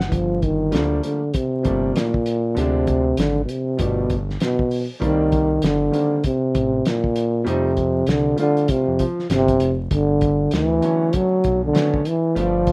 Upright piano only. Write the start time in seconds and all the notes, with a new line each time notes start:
0.71 F3 G3 A3 A#3 D4
1.63 F3 G3 A3 A#3 D4
2.55 D3 F3 G#3 C4 D4
3.77 F3 G3 A3 B3 D4
5.00 D#3 G3 A#3 C4 D4
5.91 D#3 G3 A#3 C4 D4
7.44 F3 G3 A3 C4 D#4
8.36 F3 G3 A3 C4 F4
10.81 D3 F#3 A3 B3 C#4
11.73 D3 F#3 A3 B3 C#4
12.34 F3 G3 A3 B3 D4